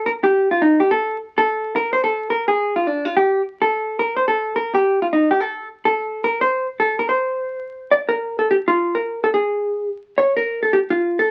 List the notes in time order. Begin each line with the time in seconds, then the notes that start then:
0.06 A#4
0.24 G4
0.51 F4
0.62 D#4
0.80 G4
0.91 A4
1.38 A4
1.76 A#4
1.93 C5
2.04 A4
2.30 A#4
2.48 G#4
2.76 F4
2.87 D4
3.05 F4
3.17 G4
3.62 A4
3.99 A#4
4.16 C5
4.28 A4
4.56 A#4
4.74 G4
5.02 F4
5.13 D#4
5.31 G4
5.40 A4
5.85 A4
6.24 A#4
6.41 C5
6.80 A4
6.99 A#4
7.09 C5
7.91 D5
8.09 A#4
8.39 A4
8.51 G4
8.68 F4
8.95 A#4
9.24 A4
9.34 G#4
10.18 C#5
10.37 A#4
10.63 A4
10.73 G4
10.90 F4
11.19 A4